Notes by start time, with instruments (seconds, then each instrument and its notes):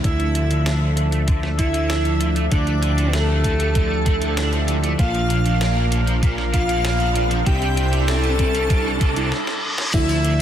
0.04 analog synth bass D2, overdriven electric guitar D3, analog polysynth F3 A3 D4 E4, analog synth pad F3 D4 A4 E5, alto saxophone E4, digital synth lead E5, kick, closed hi-hat, riser
0.20 overdriven electric guitar A3, closed hi-hat
0.35 overdriven electric guitar D3, closed hi-hat
0.51 overdriven electric guitar D3, analog polysynth F3 A3 D4 E4, closed hi-hat
0.66 overdriven electric guitar D4, snare, closed hi-hat
0.81 overdriven electric guitar D3
0.97 overdriven electric guitar D3, analog polysynth F3 A3 D4 E4, closed hi-hat
1.12 overdriven electric guitar A3, closed hi-hat
1.28 overdriven electric guitar D3, analog polysynth F3 A3 D4 E4, kick, closed hi-hat
1.43 overdriven electric guitar A3, snare
1.59 overdriven electric guitar D3, analog polysynth F3 A3 D4 E4, alto saxophone E4, digital synth lead E5, kick, closed hi-hat
1.74 overdriven electric guitar D3, closed hi-hat
1.90 overdriven electric guitar D4, snare, closed hi-hat
2.05 overdriven electric guitar D3, analog polysynth F3 A3 D4 E4, closed hi-hat
2.21 overdriven electric guitar D3, closed hi-hat
2.36 overdriven electric guitar A3, closed hi-hat
2.52 analog synth bass D2, overdriven electric guitar D3, analog polysynth F3 A3 D4 E4, alto saxophone D4, analog synth pad G4, digital synth lead D5, kick, closed hi-hat
2.67 overdriven electric guitar A3, closed hi-hat
2.83 overdriven electric guitar D3, closed hi-hat
2.98 overdriven electric guitar D3, analog polysynth F3 A3 D4 E4, closed hi-hat
3.13 alto saxophone A3, overdriven electric guitar D4, digital synth lead A4, snare, closed hi-hat
3.29 overdriven electric guitar D3
3.44 overdriven electric guitar D3, analog polysynth F3 A3 D4 E4, kick, closed hi-hat
3.60 overdriven electric guitar A3, closed hi-hat
3.75 overdriven electric guitar D3, analog polysynth F3 A3 D4 E4, kick, closed hi-hat
3.91 overdriven electric guitar A3
4.06 overdriven electric guitar D3, analog polysynth F3 A3 D4 E4, kick, closed hi-hat
4.22 overdriven electric guitar D3, closed hi-hat
4.37 overdriven electric guitar D4, snare, closed hi-hat
4.53 overdriven electric guitar D3, analog polysynth F3 A3 D4 E4, closed hi-hat
4.68 overdriven electric guitar D3, closed hi-hat
4.84 overdriven electric guitar A3, closed hi-hat
4.99 analog synth bass A#1, overdriven electric guitar A#2, analog polysynth F3 A#3 D4 F4, alto saxophone F4, analog synth pad A#4 F5, digital synth lead F5, kick, closed hi-hat
5.15 overdriven electric guitar F3, closed hi-hat
5.30 overdriven electric guitar A#2, closed hi-hat
5.46 overdriven electric guitar A#2, analog polysynth F3 A#3 D4 F4, closed hi-hat
5.61 overdriven electric guitar A#3, snare, closed hi-hat
5.76 overdriven electric guitar A#2
5.92 overdriven electric guitar A#2, analog polysynth F3 A#3 D4 F4, closed hi-hat
6.07 overdriven electric guitar F3, closed hi-hat
6.23 overdriven electric guitar A#2, analog polysynth F3 A#3 D4 F4, kick, closed hi-hat
6.38 overdriven electric guitar F3, snare
6.53 overdriven electric guitar A#2, analog polysynth F3 A#3 D4 F4, alto saxophone F4, digital synth lead F5, kick, closed hi-hat
6.69 overdriven electric guitar A#2, closed hi-hat
6.85 overdriven electric guitar A#3, snare, closed hi-hat
7.00 overdriven electric guitar A#2, analog polysynth F3 A#3 D4 F4, closed hi-hat
7.15 overdriven electric guitar A#2, closed hi-hat
7.31 overdriven electric guitar F3, closed hi-hat
7.46 analog synth bass C2, overdriven electric guitar C3, analog polysynth G3 C4 D4 E4, analog synth pad D4 G4 C5 E5, alto saxophone G4, digital synth lead G5, kick, closed hi-hat
7.62 overdriven electric guitar G3, closed hi-hat
7.77 overdriven electric guitar C3, closed hi-hat
7.93 overdriven electric guitar C3, analog polysynth G3 C4 D4 E4, closed hi-hat
8.08 overdriven electric guitar C4, alto saxophone A4, digital synth lead A5, snare, closed hi-hat
8.24 overdriven electric guitar C3, closed hi-hat
8.39 overdriven electric guitar C3, analog polysynth G3 C4 D4 E4, kick, closed hi-hat
8.55 overdriven electric guitar G3, closed hi-hat
8.70 overdriven electric guitar C3, analog polysynth G3 C4 D4 E4, kick, closed hi-hat, reverse cymbal
8.86 overdriven electric guitar G3
9.01 overdriven electric guitar C3, kick, closed hi-hat
9.16 overdriven electric guitar C3, analog polysynth G3 C4 D4 E4, closed hi-hat
9.32 snare
9.47 snare
9.78 snare
9.94 analog synth bass D2, overdriven electric guitar D3, analog synth pad F3 D4 A4 E5, analog polysynth F3 A3 D4 E4, alto saxophone E4, digital synth lead E5, kick, closed hi-hat, crash, tambourine
10.09 overdriven electric guitar F3, closed hi-hat, tambourine
10.25 overdriven electric guitar D3, closed hi-hat